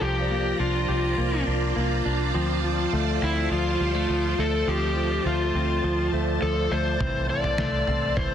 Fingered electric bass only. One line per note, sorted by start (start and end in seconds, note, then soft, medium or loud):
0.01 0.52 C2 medium
0.59 0.85 C2 medium
0.89 1.14 C2 medium
1.18 1.43 C2 loud
1.47 1.72 C2 medium
1.76 2.02 C2 medium
2.05 2.31 C2 medium
2.34 2.86 D2 medium
2.93 3.18 D2 medium
3.22 3.47 D2 medium
3.51 3.76 D2 loud
3.80 4.06 D2 medium
4.09 4.35 D2 loud
4.38 4.64 D2 medium
4.67 5.18 D2 medium
5.25 5.51 D2 medium
5.55 5.80 D2 medium
5.84 6.09 D2 loud
6.12 6.38 D2 medium
6.42 6.67 D2 medium
6.71 6.97 D2 medium
7.00 7.52 C2 medium
7.59 7.84 C2 medium
7.88 8.13 C2 medium
8.17 8.34 C2 loud